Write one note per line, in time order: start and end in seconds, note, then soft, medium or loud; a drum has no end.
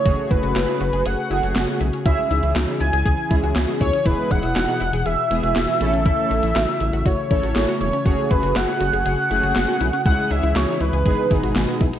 0.00 2.02 A3 medium
0.00 0.30 C#5 loud
0.06 0.16 F#1 loud
0.06 4.02 C#3 medium
0.06 0.82 A3 medium
0.06 0.82 C#4 medium
0.06 0.20 F#4 medium
0.06 0.82 F#4 medium
0.06 2.04 F#4 medium
0.06 0.82 G#4 medium
0.06 5.77 G#4 medium
0.06 kick loud
0.06 closed hi-hat medium
0.31 0.41 F#1 loud
0.31 0.38 E4 medium
0.31 1.07 B4 loud
0.31 kick loud
0.31 closed hi-hat medium
0.43 0.54 F#1 loud
0.43 0.50 F#4 medium
0.43 closed hi-hat soft
0.55 0.66 F#1 loud
0.55 0.63 E4 medium
0.55 snare loud
0.55 clap loud
0.55 closed hi-hat medium
0.68 0.75 E4 medium
0.81 0.91 F#1 loud
0.81 0.88 F#4 medium
0.81 closed hi-hat medium
0.93 1.04 F#1 loud
0.93 1.00 G#4 medium
0.93 closed hi-hat medium
1.06 1.16 F#1 loud
1.06 1.19 G#4 medium
1.06 1.81 F#5 loud
1.06 closed hi-hat medium
1.31 1.41 F#1 loud
1.31 1.88 A3 medium
1.31 1.88 C#4 medium
1.31 1.38 E4 medium
1.31 1.88 F#4 medium
1.31 1.88 G#4 medium
1.31 closed hi-hat medium
1.43 1.54 F#1 loud
1.43 1.50 F#4 medium
1.43 closed hi-hat medium
1.56 1.66 F#1 loud
1.56 1.63 G#4 medium
1.56 snare loud
1.56 clap medium
1.56 closed hi-hat medium
1.68 1.75 F#4 medium
1.81 1.91 B1 loud
1.81 1.88 E4 medium
1.81 closed hi-hat medium
1.93 2.00 C#4 medium
1.93 closed hi-hat medium
2.06 2.16 C#2 loud
2.06 8.02 E3 medium
2.06 2.82 G#3 medium
2.06 2.82 C#4 medium
2.06 2.20 E4 medium
2.06 2.82 E4 medium
2.06 4.04 E4 medium
2.06 2.82 G#4 medium
2.06 2.52 E5 loud
2.06 kick loud
2.06 closed hi-hat medium
2.31 2.41 C#2 loud
2.31 2.38 D#4 medium
2.31 closed hi-hat medium
2.43 2.53 C#2 medium
2.43 2.50 E4 medium
2.43 closed hi-hat soft
2.55 2.66 C#2 medium
2.55 2.63 D#4 medium
2.55 snare loud
2.55 clap loud
2.55 closed hi-hat medium
2.68 2.75 D#4 medium
2.80 2.91 C#2 medium
2.80 2.88 E4 medium
2.80 3.52 G#5 loud
2.80 closed hi-hat medium
2.93 3.04 C#2 loud
2.93 3.00 G#4 medium
2.93 closed hi-hat medium
3.06 3.16 C#2 loud
3.06 3.20 G#4 medium
3.06 kick medium
3.06 closed hi-hat medium
3.31 3.41 C#2 medium
3.31 3.88 G#3 medium
3.31 3.88 C#4 medium
3.31 3.38 E4 medium
3.31 3.88 E4 medium
3.31 3.88 G#4 medium
3.31 kick medium
3.31 closed hi-hat medium
3.43 3.54 C#2 medium
3.43 3.50 F#4 medium
3.43 closed hi-hat medium
3.56 3.66 C#2 loud
3.56 3.63 G#4 medium
3.56 snare loud
3.56 clap medium
3.56 closed hi-hat medium
3.68 3.75 F#4 medium
3.81 3.91 D#2 medium
3.81 3.88 E4 medium
3.81 4.07 C#5 loud
3.81 kick medium
3.81 open hi-hat medium
3.93 4.00 C#4 medium
3.93 closed hi-hat medium
4.06 4.16 E1 loud
4.06 5.79 B2 medium
4.06 4.82 G#3 medium
4.06 4.82 B3 medium
4.06 8.02 E4 medium
4.06 4.20 E4 medium
4.06 4.82 E4 medium
4.06 4.82 G#4 medium
4.06 4.32 B4 loud
4.06 kick loud
4.06 closed hi-hat medium
4.31 4.41 E1 loud
4.31 4.38 D#4 medium
4.31 5.07 F#5 loud
4.31 kick loud
4.31 closed hi-hat medium
4.43 4.54 E1 medium
4.43 4.50 E4 medium
4.43 closed hi-hat soft
4.55 4.66 E1 loud
4.55 4.63 D#4 medium
4.55 snare loud
4.55 clap medium
4.55 closed hi-hat medium
4.68 4.75 D#4 medium
4.81 4.91 E1 loud
4.81 4.88 E4 medium
4.81 closed hi-hat medium
4.93 5.04 E1 loud
4.93 5.00 G#4 medium
4.93 closed hi-hat medium
5.06 5.16 E1 loud
5.06 5.20 G#4 medium
5.06 6.05 E5 loud
5.06 closed hi-hat medium
5.31 5.41 E1 loud
5.31 5.81 G#3 medium
5.31 5.81 B3 medium
5.31 5.80 E4 medium
5.31 5.38 E4 medium
5.31 5.81 G#4 medium
5.31 closed hi-hat medium
5.43 5.54 E1 loud
5.43 5.50 F#4 medium
5.43 closed hi-hat medium
5.56 5.66 E1 loud
5.56 5.63 G#4 medium
5.56 snare loud
5.56 clap medium
5.56 closed hi-hat medium
5.68 5.75 F#4 medium
5.81 6.12 A1 loud
5.81 11.02 C#3 medium
5.81 10.02 A3 medium
5.81 6.61 A3 loud
5.81 6.61 C#4 medium
5.81 5.88 E4 medium
5.81 6.61 E4 medium
5.81 6.61 A4 loud
5.81 closed hi-hat medium
5.93 6.00 C#4 medium
5.93 closed hi-hat medium
6.06 6.20 E4 medium
6.06 7.07 E5 loud
6.06 kick loud
6.06 closed hi-hat medium
6.31 6.41 A1 loud
6.31 6.38 D#4 medium
6.31 closed hi-hat medium
6.43 6.54 A1 medium
6.43 6.50 E4 medium
6.43 closed hi-hat soft
6.55 6.66 A1 loud
6.55 6.63 D#4 medium
6.55 snare loud
6.55 clap loud
6.55 closed hi-hat medium
6.68 6.75 D#4 medium
6.81 6.91 A1 loud
6.81 6.88 E4 medium
6.81 closed hi-hat medium
6.93 7.04 A1 medium
6.93 7.00 F#4 medium
6.93 closed hi-hat medium
7.06 7.16 A1 loud
7.06 7.20 F#4 medium
7.06 7.30 C#5 loud
7.06 kick medium
7.06 closed hi-hat medium
7.31 7.41 A1 loud
7.31 7.88 A3 medium
7.31 7.88 C#4 medium
7.31 7.88 E4 medium
7.31 7.38 E4 medium
7.31 7.88 A4 medium
7.31 7.77 C#5 loud
7.31 kick loud
7.31 closed hi-hat medium
7.43 7.54 A1 loud
7.43 7.50 F#4 medium
7.43 closed hi-hat medium
7.56 7.66 A1 loud
7.56 7.63 G#4 medium
7.56 snare loud
7.56 clap medium
7.56 closed hi-hat medium
7.68 7.75 F#4 medium
7.81 7.91 E1 medium
7.81 7.88 E4 medium
7.81 8.32 C#5 loud
7.81 closed hi-hat medium
7.93 8.00 C#4 medium
7.93 closed hi-hat medium
8.06 8.16 F#1 loud
8.06 8.82 A3 medium
8.06 8.82 C#4 medium
8.06 10.04 F#4 medium
8.06 8.82 F#4 medium
8.06 8.20 F#4 medium
8.06 11.99 G#4 medium
8.06 8.82 G#4 medium
8.06 kick loud
8.06 closed hi-hat medium
8.31 8.41 F#1 loud
8.31 8.38 E4 medium
8.31 8.57 B4 medium
8.31 kick loud
8.31 closed hi-hat medium
8.43 8.54 F#1 loud
8.43 8.50 F#4 medium
8.43 closed hi-hat soft
8.55 8.66 F#1 loud
8.55 8.63 E4 medium
8.55 9.05 F#5 loud
8.55 snare loud
8.55 clap medium
8.55 closed hi-hat medium
8.68 8.75 E4 medium
8.81 8.91 F#1 loud
8.81 8.88 F#4 medium
8.81 closed hi-hat medium
8.93 9.04 F#1 loud
8.93 9.00 G#4 medium
8.93 closed hi-hat medium
9.06 9.16 F#1 loud
9.06 9.20 G#4 medium
9.06 10.02 F#5 loud
9.06 closed hi-hat medium
9.31 9.41 F#1 loud
9.31 9.88 A3 medium
9.31 9.88 C#4 medium
9.31 9.38 E4 medium
9.31 9.88 F#4 medium
9.31 9.88 G#4 medium
9.31 closed hi-hat medium
9.43 9.54 F#1 loud
9.43 9.50 F#4 medium
9.43 closed hi-hat medium
9.56 9.66 F#1 loud
9.56 9.63 G#4 medium
9.56 snare loud
9.56 clap medium
9.56 closed hi-hat medium
9.68 9.75 F#4 medium
9.81 9.91 B1 medium
9.81 9.88 E4 medium
9.81 closed hi-hat medium
9.93 10.00 C#4 medium
9.93 closed hi-hat medium
10.06 10.16 C#2 loud
10.06 11.05 E3 medium
10.06 10.82 G#3 medium
10.06 10.82 C#4 medium
10.06 11.05 E4 medium
10.06 10.20 E4 medium
10.06 10.82 E4 medium
10.06 10.82 G#4 medium
10.06 10.32 F#5 loud
10.06 kick loud
10.06 closed hi-hat medium
10.31 10.41 C#2 loud
10.31 10.38 D#4 medium
10.31 10.57 E5 loud
10.31 closed hi-hat medium
10.43 10.54 C#2 loud
10.43 10.50 E4 medium
10.43 closed hi-hat soft
10.55 10.66 C#2 loud
10.55 10.63 D#4 medium
10.55 10.82 C#5 medium
10.55 snare loud
10.55 clap medium
10.55 closed hi-hat medium
10.68 10.75 D#4 medium
10.80 10.91 C#2 medium
10.80 10.88 E4 medium
10.80 11.81 B4 medium
10.80 closed hi-hat medium
10.93 11.04 C#2 loud
10.93 11.00 G#4 medium
10.93 closed hi-hat soft
11.06 11.16 G#1 medium
11.06 11.99 B2 medium
11.06 11.99 D#3 medium
11.06 11.26 G#3 medium
11.06 11.26 B3 medium
11.06 11.99 D#4 medium
11.06 11.26 D#4 medium
11.06 11.20 G#4 medium
11.06 11.26 G#4 medium
11.06 kick medium
11.06 closed hi-hat medium
11.31 11.41 G#1 loud
11.31 11.88 G#3 medium
11.31 11.88 B3 medium
11.31 11.88 D#4 medium
11.31 11.38 E4 medium
11.31 11.88 G#4 medium
11.31 kick medium
11.31 closed hi-hat medium
11.43 11.54 G#1 loud
11.43 11.50 F#4 medium
11.43 closed hi-hat medium
11.56 11.66 G#1 loud
11.56 11.63 G#4 medium
11.56 snare loud
11.56 clap medium
11.56 closed hi-hat medium
11.68 11.75 F#4 medium
11.81 11.91 B1 loud
11.81 11.88 E4 medium
11.81 kick medium
11.81 open hi-hat medium
11.93 11.99 D#4 medium
11.93 closed hi-hat medium